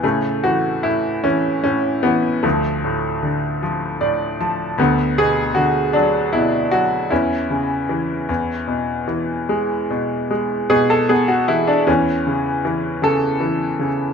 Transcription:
<<
  \new Staff \with { instrumentName = "Grand piano" } { \time 6/8 \key a \major \tempo 4. = 51 a8 fis'8 e'8 cis'8 cis'8 b8 | a2~ a8 r8 | b8 gis'8 fis'8 d'8 e'8 fis'8 | e'2~ e'8 r8 |
r4. gis'16 a'16 gis'16 fis'16 e'16 d'16 | cis'4. a'4 r8 | }
  \new Staff \with { instrumentName = "Grand piano" } { \clef bass \time 6/8 \key a \major << { a,8 e8 a,8 e8 a,8 e8 | d,8 a,8 d8 f8 <a, d''>8 <f a''>8 | d,8 b,8 d8 fis8 b,8 fis8 | e,8 cis8 e8 e,8 b,8 e8 |
gis8 b,8 gis8 b,8 b8 e8 | e,8 cis8 e8 cis8 e8 cis8 | } \\ { cis4. r4. | f2~ f8 r8 | d4. r4. | cis'2~ cis'8 r8 |
r2. | e4. r4. | } >> }
>>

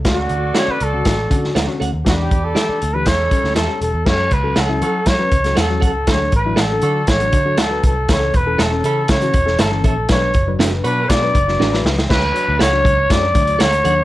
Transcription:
<<
  \new Staff \with { instrumentName = "Clean electric guitar" } { \time 4/4 \key d \major \tempo 4 = 119 r4 <a' cis'' fis''>8 r4. <a' cis'' fis''>8 <a' cis'' fis''>8 | r4 <g' d'' e''>8 r4. <g' cis'' e''>8 r8 | r4 <a' cis'' fis''>8 r4. <a' cis'' fis''>8 <a' cis'' fis''>8 | r4 <a' d'' fis''>8 r4. <a' d'' fis''>8 r8 |
r4 <a' cis'' e''>8 r4. <a' cis'' e''>8 <a' cis'' e''>8 | r4 <d' fis' b'>8 r4. <d' fis' b'>8 r8 | r4 <a' cis'' fis''>8 r4. <a' cis'' fis''>8 <a' cis'' fis''>8 | }
  \new Staff \with { instrumentName = "Trumpet" } { \time 4/4 \key d \major fis'4 cis''16 b'16 a'4. r4 | fis'16 g'8 a'4 b'16 cis''4 a'8 a'8 | cis''8 b'8 a'4 cis''4 a'8 a'8 | cis''8 b'8 a'4 cis''4 a'8 a'8 |
cis''8 b'8 a'4 cis''4 a'8 a'8 | cis''4 r8 b'8 d''4. r8 | b'4 cis''4 d''4 cis''4 | }
  \new Staff \with { instrumentName = "Saxophone section" } { \time 4/4 \key d \major <fis' a' d''>2.~ <fis' a' d''>8 r8 | <g' b' d''>4. r8 <cis' e' a'>4. r8 | <cis' fis' a'>16 r4 r16 <cis' fis' a'>8. r4. r16 | <d' fis' a'>16 r4 r16 <d' fis' a'>8. r4. r16 |
<cis' e' a'>16 r4 r16 <cis' e' a'>8. r4. r16 | <d' fis' b'>16 r4 r16 <d' fis' b'>8. r4. r16 | r1 | }
  \new Staff \with { instrumentName = "Reed electric piano" } { \time 4/4 \key d \major <d cis' fis'>8 r8 <d cis' fis'>8 r16 <d cis' fis'>8 r16 <d cis' fis'>8 r16 <d cis' fis'>8 r16 | <e d' g'>8 r8 <e d' a'>8 r16 <e d' g'>16 r8 <g cis' a'>8 r16 <g cis' a'>8 r16 | <fis cis' a'>8 r16 <fis cis' a'>16 r16 <fis cis' e'>8 r8 <fis cis' b'>16 r16 <fis cis' a'>16 r16 <fis cis' fis'>8 r16 | <fis d' a'>8 r16 <fis d' e'>16 r16 <fis d' a'>8 r8 <fis d' fis'>16 r16 <fis d' a'>16 r16 <fis d' b'>8 r16 |
<e cis' a'>8 r16 <e cis' a'>16 r16 <e cis' a'>8 r8 <e cis' fis'>16 r16 <e cis' a'>16 r16 <e cis' a'>8 r16 | <fis d' b'>8 r16 <fis d' b'>16 r16 <fis d' b'>8 r8 <fis d' b'>16 r16 <fis d' b'>16 r16 <fis d' b'>8 r16 | <fis d' cis''>16 r16 <fis d' cis''>8 r16 <fis d' cis''>8 r16 <fis d' cis''>16 r16 <fis d' cis''>8 r8 <fis d' cis''>16 r16 | }
  \new Staff \with { instrumentName = "Picked electric bass" } { \clef bass \time 4/4 \key d \major d,8 d,8 r8 cis,8 a,,8 d8 d,16 r16 d,16 ees,16 | e,8 e,8 r8 d,8 e,8 r16 d,16 e,16 r16 e,,16 e,16 | fis,8 cis,8 cis,8 fis8 fis8 cis,8 e,8 cis,8 | d,8 a,,8 a,,8 d8 a,,8 d8 d,8 c,8 |
cis,8 e,,8 e,,8 cis8 cis8 e,,8 g,,8 bes,,8 | b,,8 fis,,8 fis,,8 b,8 b,8 fis,,8 a,,8 cis,8 | d,8 r16 d,16 cis,8 cis,8 fis,8 d,8 d,8 ees,8 | }
  \new DrumStaff \with { instrumentName = "Drums" } \drummode { \time 4/4 <hh bd sn>8 hh8 <hh sn>8 hh8 <hh bd sn>8 <hh bd>16 sn16 <hh sn>8 hh8 | <hh bd sn>8 <hh bd>8 <hh sn>8 hh8 <hh bd sn>8 <hh bd>16 sn16 <hh sn>8 hh8 | <cymc bd sn>8 <hh bd>8 <hh sn>8 hh8 <hh bd sn>8 <hh bd>16 <hh sn>16 <hh sn>8 <hh bd>8 | <hh bd sn>8 <hh bd>8 <hh sn>8 hh8 <hh bd sn>16 hh16 <hh bd>8 <hh sn>8 <hh bd>8 |
<hh bd sn>8 <hh bd>8 <hh sn>8 hh8 <hh bd sn>16 hh16 <hh bd>16 sn16 <hh sn>8 <hh bd>8 | <hh bd sn>8 <hh bd>8 <hh sn>8 hh8 <hh bd sn>8 <hh bd>16 sn16 sn16 sn16 sn16 sn16 | <cymc bd sn>8 hh8 <hh sn>8 <hh bd>8 <hh bd sn>8 <hh bd>16 hh16 <hh sn>16 hh16 hh8 | }
>>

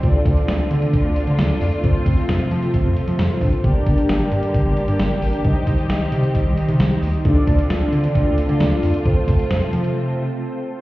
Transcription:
<<
  \new Staff \with { instrumentName = "Analog polysynth" } { \time 4/4 \key d \phrygian \tempo 4 = 133 <d' f' a' d''>1 | <c' f' a' c''>1 | <d' g' bes' d''>1 | <ees' g' c'' ees''>1 |
<d' f' a' d''>1 | <c' f' a' c''>1 | }
  \new Staff \with { instrumentName = "String section" } { \clef bass \time 4/4 \key d \phrygian << { f'1~ | f'1 | g'1~ | g'1 |
f'1~ | f'1 | } \\ { <d a c'>1 | <c f>1 | <d g bes>1 | <ees g c'>1 |
<d a c'>1 | <c f>1 | } >> }
  \new Staff \with { instrumentName = "Analog synth bass" } { \clef bass \time 4/4 \key d \phrygian d,16 r16 d,16 r16 d,16 r16 d16 r8 d,16 r16 d16 d,16 r16 f,16 r16 | f,16 r16 f,16 r16 f,16 r16 f16 r8 f,16 r16 f16 f,16 r16 g,16 r16 | g,,16 r16 g,,16 r16 g,,16 r16 g,16 r8 g,,16 r16 g,16 g,,16 r16 a,,16 r16 | c,16 r16 c,16 r16 c,16 r16 c16 r8 c,16 r16 c16 c,16 r16 d,16 r16 |
d,16 r16 d,16 r16 d,16 r16 d16 r8 d,16 r16 d16 d,16 r16 f,16 r16 | f,16 r16 f,16 r16 f,16 r16 f16 r2 r16 | }
  \new DrumStaff \with { instrumentName = "Drums" } \drummode { \time 4/4 <hh bd>8 <hh bd>16 hh16 <hh sn>8 hh16 hh16 <hh bd>8 hh16 hh16 <hh sn>8 hho16 hh16 | <hh bd>8 <hh bd>16 hh16 <hh sn>8 hh16 hh16 <hh bd>8 hh16 hh16 <hh sn>8 <hho bd>16 hh16 | <hh bd>8 <hh bd>16 hh16 <hh sn>8 hh16 hh16 <hh bd>8 hh16 hh16 <hh sn>8 hho16 hh16 | <hh bd>8 <hh bd>16 hh16 <hh sn>8 hh16 hh16 <hh bd>8 hh16 hh16 <hh sn>8 hho16 hh16 |
<hh bd>8 <hh bd>16 hh16 <hh sn>8 hh16 hh16 <hh bd>8 hh16 hh16 <hh sn>8 hho16 hh16 | <hh bd>8 <hh bd>16 hh16 <hh sn>8 hh16 hh16 r4 r4 | }
>>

